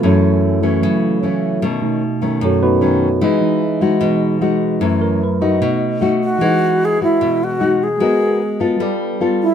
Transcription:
<<
  \new Staff \with { instrumentName = "Alto flute" } { \time 4/4 \key e \major \tempo 4 = 150 r1 | r1 | r1 | r2. r8 fis'8~ |
fis'4 gis'8 e'4 fis'4 gis'8~ | gis'4. r2 e'8 | }
  \new Staff \with { instrumentName = "Tine electric piano" } { \time 4/4 \key e \major <cis' fis' a' cis''>4. r2 r8 | r2 <cis' fis' a' cis''>8 <b dis' fis' b'>4. | <dis' gis' b' dis''>4. r2 r8 | r8 ais'8 b'8 dis''4. r4 |
<e fis' gis' b' dis''>1 | <gis fis' ais' dis''>2 <g f' a' b' d''>2 | }
  \new Staff \with { instrumentName = "Tine electric piano" } { \time 4/4 \key e \major <fis a e'>4. r8 <fis a e'>8 r4. | r8 <b, a dis'>4. r2 | r8 <e gis dis'>4. <e gis dis'>8 r4. | <fis a e'>8 r4. <b, a dis'>2 |
r1 | r1 | }
  \new Staff \with { instrumentName = "Nylon-string guitar" } { \time 4/4 \key e \major << { <e a cis'>4. <e a cis'>4. <e a cis'>4 | <dis a cis'>4 r8 <dis a cis'>4. <dis a cis'>8 r8 | <gis dis' fis'>4 r8 <gis dis' fis'>4. <gis dis' fis'>4 | <e a cis'>4 r8 <a dis' fis'>4. <a dis' fis'>4 |
<gis dis' fis'>4. <gis fis'>4. <gis dis' fis'>8 r8 | <b fis' ais'>4 r8 <b f' a'>4. <b f' a'>8 r8 | } \\ { fis,2 cis2 | b,2 fis,2 | e2 b,2 | fis,2 b,2 |
e2 b,2 | gis2 g2 | } >> }
>>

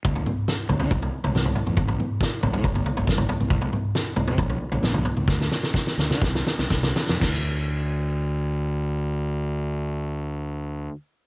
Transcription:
<<
  \new Staff \with { instrumentName = "Fingered electric bass" } { \clef bass \time 4/4 \key d \minor \tempo 4 = 131 d,8 r4 d,16 d16 c,8 r16 c,16 c,8 r16 f,16 | a,,8 r4 a,,16 a,16 g,,8 r16 g,,16 g,,8 r16 c,16 | c,8 r4 c,16 c16 bes,,8 r16 bes,,16 bes,,8 r16 des,16 | d,8 r4 d,16 d16 c,8 r16 c,16 c,8 r16 f,16 |
d,1~ | d,1 | }
  \new DrumStaff \with { instrumentName = "Drums" } \drummode { \time 4/4 <bd tomfh>16 tomfh16 toml8 sn8 <tomfh toml>16 tomfh16 <bd tomfh>16 tomfh8 tomfh16 <sn toml>16 tomfh16 tomfh16 toml16 | <bd tomfh>16 tomfh16 toml8 <bd sn>8 <tomfh toml>16 tomfh16 <bd tomfh>16 tomfh16 tomfh16 tomfh16 <bd sn toml>16 tomfh16 tomfh16 toml16 | <bd tomfh>16 tomfh16 toml8 sn8 <tomfh toml>16 tomfh16 <bd tomfh>16 tomfh8 tomfh16 <sn toml>16 tomfh16 tomfh16 toml16 | <bd sn>16 sn16 sn16 sn16 <bd sn>16 sn16 sn16 sn16 <bd sn>16 sn16 sn16 sn16 <bd sn>16 sn16 sn16 sn16 |
<cymc bd sn>4 r4 r4 r4 | r4 r4 r4 r4 | }
>>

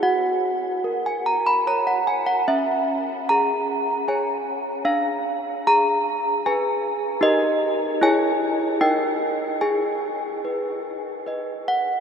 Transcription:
\new Staff \with { instrumentName = "Handbells" } { \time 3/4 \key fis \mixolydian \tempo 4 = 74 << { fis''4~ fis''16 gis''16 ais''16 b''16 ais''16 fis''16 gis''16 fis''16 | \key gis \minor e''4 ais''4 gis''4 | f''4 ais''4 aes''4 | dis''4 gis''4 g''4 |
gis''2 r8 fis''8 | } \\ { fis'4 ais'4 <ais' cis''>4 | cis'4 gis'4 <gis' cis''>4 | d'4 aes'4 <aes' b'>4 | <dis' g' ais'>4 <e' gis' cis''>4 <dis' ais' dis''>4 |
gis'4 b'4 <b' dis''>4 | } >> }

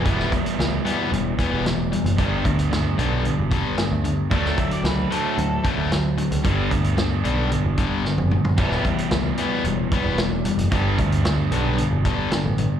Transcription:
<<
  \new Staff \with { instrumentName = "Lead electric guitar" } { \time 4/4 \key e \minor \tempo 4 = 112 r1 | r1 | a''8 e''16 d''16 b'8 a'4 r4. | r1 |
r1 | r1 | }
  \new Staff \with { instrumentName = "Overdriven electric guitar" } { \clef bass \time 4/4 \key e \minor <e g b e'>1 | <g, d g b d'>1 | <d fis a d'>1 | <g, d g b d'>1 |
<e g b e'>1 | <g, d g b d'>1 | }
  \new Staff \with { instrumentName = "Overdriven electric guitar" } { \clef bass \time 4/4 \key e \minor <e g b>8 <e g>8 <e g>8 <e g b>8 <e g>8 <e g b>8 <e g>8 <e g>8 | <g, d g>8 <g, d>8 <g, d>8 <g, d g>8 <g, d>8 <g, d g>8 <g, d>8 <g, d>8 | <d fis a>8 <d fis>8 <d fis>8 <d fis a>8 <d fis>8 <d fis a>8 <d fis>8 <d fis>8 | <g, d g>8 <g, d>8 <g, d>8 <g, d g>8 <g, d>8 <g, d g>8 <g, d>8 <g, d>8 |
<e g b>8 <e g>8 <e g>8 <e g b>8 <e g>8 <e g b>8 <e g>8 <e g>8 | <g, d g>8 <g, d>8 <g, d>8 <g, d g>8 <g, d>8 <g, d g>8 <g, d>8 <g, d>8 | }
  \new Staff \with { instrumentName = "Picked electric bass" } { \clef bass \time 4/4 \key e \minor e,,8 r8 cis,8 r8 e,,8 r16 e,,4 fis,,16 | g,,8 d,4 b,,8. e,,8 r8 d,8 r16 | d,8 r8 cis,8 r8 d,8 r16 d,4 cis,16 | g,,8 d,4 b,,8. e,,8 r8 fis,,8 r16 |
e,,8 r8 cis,8 r8 e,,8 r16 e,,4 fis,,16 | g,,8 d,4 b,,8. e,,8 r8 a,,8 r16 | }
  \new DrumStaff \with { instrumentName = "Drums" } \drummode { \time 4/4 <hh bd>16 sn16 <hh bd>16 hh16 <hh sn>8 hh8 hh8 <hh bd>8 <hh sn>8 hh16 hh16 | <hh bd>8 <hh bd>16 hh16 <hh sn>8 hh8 hh8 <hh bd>8 <hh sn>8 hh8 | <hh bd>16 sn16 <hh bd>16 hh16 <hh sn>8 hh8 hh8 <hh bd>8 <hh sn>8 hh16 hh16 | <hh bd>8 <hh bd>16 hh16 <hh sn>8 hh8 hh8 <hh bd>8 sn16 tommh16 toml16 tomfh16 |
<cymc hh bd>16 sn16 <hh bd>16 hh16 <hh sn>8 hh8 hh8 <hh bd>8 <hh sn>8 hh16 hh16 | <hh bd>8 <hh bd>16 hh16 <hh sn>8 hh8 hh8 <hh bd>8 <hh sn>8 hh8 | }
>>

